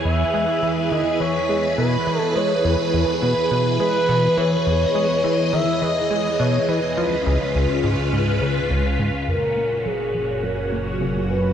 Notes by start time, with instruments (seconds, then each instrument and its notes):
Already playing: string machine E2 E3 G#4
0.05 analog synth bass E2, string machine B4, analog synth lead E5
0.34 analog synth bass G#3
0.62 analog synth bass E3
0.91 analog synth bass D#3, analog synth lead D#5
1.20 analog synth bass E3, analog synth lead C#5
1.49 analog synth bass G#3
1.78 analog synth bass B2, analog synth lead B4
2.07 analog synth bass E3
2.20 analog synth lead A4
2.36 analog synth bass G#3, analog synth lead C#5
2.64 analog synth bass E2
2.93 analog synth bass E2
3.22 analog synth bass B2, analog synth lead B4
3.51 analog synth bass B2
3.80 analog synth bass G#3, analog synth lead B4
4.09 analog synth bass B2
4.37 analog synth bass E3, analog synth lead C#5
4.66 analog synth bass E2, string machine D#5
4.95 analog synth bass G#3
5.24 analog synth bass E3
5.53 analog synth bass D#3, analog synth lead E5
5.82 analog synth bass E3, analog synth lead D#5
6.11 analog synth bass G#3
6.39 analog synth bass B2, analog synth lead C#5
6.68 analog synth bass E3, analog synth lead B4
6.97 string machine C#2 C#3 F4 B4, analog synth bass F3
7.26 analog synth bass C#2
7.55 analog synth bass C#2
7.84 analog synth bass G#2
8.13 analog synth bass G#2
8.41 analog synth bass C#3
8.70 analog synth bass C#2
8.99 analog synth bass G#2
9.28 synth drone F#1, analog synth bass F#2, string machine A#2 C#4 F#4, analog synth lead A#4
9.57 analog synth bass A#3
9.85 analog synth bass F#3, analog synth lead G#4
10.14 analog synth bass F3
10.43 analog synth bass F#3, analog synth lead A#4
10.72 analog synth bass A#3
11.01 analog synth bass C#3
11.30 analog synth bass F#3, analog synth lead B4